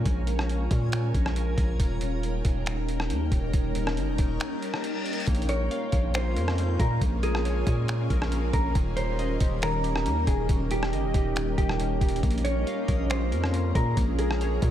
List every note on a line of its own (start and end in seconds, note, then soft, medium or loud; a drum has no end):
0.00 1.76 G#3 medium
0.00 1.76 A#3 medium
0.00 1.76 C#4 medium
0.00 1.76 F4 medium
0.00 1.76 A#4 medium
0.00 1.76 G#5 medium
0.06 0.68 A#1 loud
0.06 kick loud
0.06 closed hi-hat medium
0.27 closed hi-hat medium
0.39 cross-stick medium
0.49 closed hi-hat medium
0.71 1.13 A#2 loud
0.71 kick medium
0.71 closed hi-hat medium
0.92 finger snap loud
0.92 closed hi-hat medium
1.14 1.56 A#1 loud
1.14 kick medium
1.14 closed hi-hat medium
1.26 cross-stick medium
1.36 closed hi-hat medium
1.58 1.79 A#1 loud
1.58 kick medium
1.58 closed hi-hat medium
1.79 2.42 D#1 loud
1.79 5.24 G3 medium
1.79 5.24 A#3 medium
1.79 5.24 C#4 medium
1.79 5.24 D#4 medium
1.79 5.24 A#4 medium
1.79 5.24 C#5 medium
1.79 5.24 G5 medium
1.79 kick loud
1.79 closed hi-hat medium
2.01 closed hi-hat medium
2.23 closed hi-hat medium
2.45 3.12 D#1 loud
2.45 kick medium
2.45 closed hi-hat medium
2.66 finger snap loud
2.66 closed hi-hat medium
2.89 closed hi-hat medium
3.00 cross-stick medium
3.10 3.31 D#2 loud
3.10 closed hi-hat medium
3.32 3.53 D#1 loud
3.32 kick medium
3.32 closed hi-hat medium
3.53 3.98 D#1 loud
3.53 kick loud
3.53 closed hi-hat medium
3.75 closed hi-hat medium
3.87 cross-stick loud
3.97 4.09 G1 loud
3.97 closed hi-hat medium
4.08 4.18 D#1 medium
4.18 4.40 D#1 loud
4.18 kick medium
4.18 closed hi-hat medium
4.40 finger snap loud
4.40 closed hi-hat medium
4.40 reverse cymbal medium
4.62 closed hi-hat medium
4.74 cross-stick medium
4.84 closed hi-hat medium
5.06 closed hi-hat medium
5.13 closed hi-hat medium
5.20 closed hi-hat medium
5.27 5.69 A#1 loud
5.27 8.72 G#3 medium
5.27 6.13 A#3 loud
5.27 14.71 A#3 medium
5.27 8.72 C#4 medium
5.27 14.71 C#4 medium
5.27 8.72 F4 medium
5.27 8.72 A#4 medium
5.27 14.71 A#4 medium
5.27 8.72 G#5 medium
5.27 kick loud
5.27 closed hi-hat medium
5.35 closed hi-hat medium
5.42 closed hi-hat medium
5.49 5.91 A#4 medium
5.49 6.10 C#5 medium
5.49 closed hi-hat medium
5.71 7.01 F5 loud
5.71 closed hi-hat medium
5.92 6.38 A#1 loud
5.92 6.35 A#4 medium
5.92 kick medium
5.92 closed hi-hat medium
6.14 6.79 A#3 medium
6.14 6.76 C5 medium
6.14 finger snap loud
6.14 closed hi-hat medium
6.36 6.77 F2 loud
6.36 7.21 A#4 medium
6.36 closed hi-hat medium
6.48 cross-stick medium
6.57 7.88 C#4 medium
6.57 closed hi-hat medium
6.79 7.00 A#2 loud
6.79 7.00 A#3 medium
6.79 7.00 A#4 medium
6.79 kick loud
6.79 closed hi-hat medium
7.01 7.64 A#1 loud
7.01 7.87 A#3 medium
7.01 kick loud
7.01 closed hi-hat medium
7.23 8.50 G#4 medium
7.23 7.66 A#4 medium
7.23 closed hi-hat medium
7.35 cross-stick loud
7.45 8.75 C#5 loud
7.45 closed hi-hat medium
7.67 8.08 A#2 loud
7.67 8.09 A#4 medium
7.67 kick medium
7.67 closed hi-hat medium
7.88 8.52 A#3 loud
7.88 finger snap loud
7.88 closed hi-hat medium
8.10 8.52 A#1 loud
8.10 8.75 A#4 loud
8.10 kick medium
8.10 closed hi-hat medium
8.22 cross-stick medium
8.32 8.75 C#4 medium
8.32 closed hi-hat medium
8.53 8.74 A#1 loud
8.53 8.75 A#3 medium
8.53 8.74 A#4 medium
8.53 kick loud
8.53 closed hi-hat medium
8.75 9.38 D#1 loud
8.75 9.61 D#3 loud
8.75 12.20 G3 medium
8.75 12.19 C#4 medium
8.75 12.20 D#4 medium
8.75 12.19 G4 medium
8.75 12.19 D#5 medium
8.75 kick loud
8.75 closed hi-hat medium
8.96 9.39 G4 medium
8.96 9.58 C5 medium
8.96 closed hi-hat medium
9.19 10.49 D#5 loud
9.19 closed hi-hat medium
9.40 10.07 D#1 loud
9.40 9.82 G4 medium
9.40 kick medium
9.40 closed hi-hat medium
9.62 10.26 D#3 medium
9.62 10.24 A#4 medium
9.62 finger snap loud
9.62 closed hi-hat medium
9.83 10.70 G4 medium
9.83 closed hi-hat medium
9.96 cross-stick medium
10.05 10.26 D#2 loud
10.05 11.36 C#4 medium
10.05 closed hi-hat medium
10.27 10.48 D#1 loud
10.27 10.48 D#3 medium
10.27 10.48 G#4 medium
10.27 kick medium
10.27 closed hi-hat medium
10.49 10.94 D#1 loud
10.49 11.35 D#3 medium
10.49 kick loud
10.49 closed hi-hat medium
10.71 11.13 G4 medium
10.71 11.54 G4 medium
10.71 closed hi-hat medium
10.83 cross-stick loud
10.93 11.05 G1 loud
10.93 12.23 D#5 medium
10.93 closed hi-hat medium
11.03 11.14 D#1 loud
11.14 11.56 D#1 loud
11.14 11.56 G4 medium
11.14 kick medium
11.14 closed hi-hat medium
11.36 12.00 D#3 medium
11.36 finger snap loud
11.36 closed hi-hat medium
11.58 12.00 D#1 loud
11.58 12.23 G4 medium
11.58 12.19 G4 medium
11.58 kick medium
11.58 closed hi-hat medium
11.69 cross-stick medium
11.79 12.23 C#4 medium
11.79 closed hi-hat medium
12.01 12.22 D#1 loud
12.01 12.23 D#3 medium
12.01 kick medium
12.01 closed hi-hat medium
12.09 closed hi-hat medium
12.16 closed hi-hat medium
12.23 12.65 A#1 loud
12.23 14.71 G#3 medium
12.23 13.09 A#3 loud
12.23 14.71 A#3 medium
12.23 14.71 C#4 medium
12.23 14.71 F4 medium
12.23 14.71 G#4 medium
12.23 kick loud
12.23 closed hi-hat medium
12.31 closed hi-hat medium
12.38 closed hi-hat medium
12.44 12.87 A#4 medium
12.44 13.06 C#5 medium
12.44 closed hi-hat medium
12.67 13.97 F5 loud
12.67 closed hi-hat medium
12.88 13.33 A#1 loud
12.88 13.30 A#4 medium
12.88 kick medium
12.88 closed hi-hat medium
13.10 13.74 A#3 medium
13.10 13.71 C5 medium
13.10 finger snap loud
13.10 closed hi-hat medium
13.32 13.73 F2 loud
13.32 14.17 A#4 medium
13.32 closed hi-hat medium
13.44 cross-stick medium
13.53 14.71 C#4 medium
13.53 closed hi-hat medium
13.75 13.96 A#2 loud
13.75 13.96 A#3 medium
13.75 13.96 A#4 medium
13.75 kick loud
13.75 closed hi-hat medium
13.97 14.60 A#1 loud
13.97 14.71 A#3 medium
13.97 kick loud
13.97 closed hi-hat medium
14.18 14.71 G#4 medium
14.18 14.61 A#4 medium
14.18 closed hi-hat medium
14.31 cross-stick loud
14.41 14.71 C#5 loud
14.41 closed hi-hat medium
14.62 14.71 A#2 loud
14.62 14.71 A#4 medium
14.62 kick loud
14.62 closed hi-hat medium